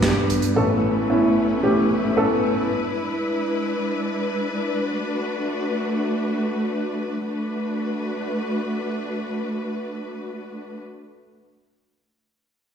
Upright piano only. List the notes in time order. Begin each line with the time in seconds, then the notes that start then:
Already playing: G1 G2 B3 D4 F#4 G4 A4
0.03 B3 D4 G4
0.56 A1 A2 B3 C#4 A4
1.10 B3 C#4 E4
1.63 B3 C#4 G4
2.17 B3 C#4 A4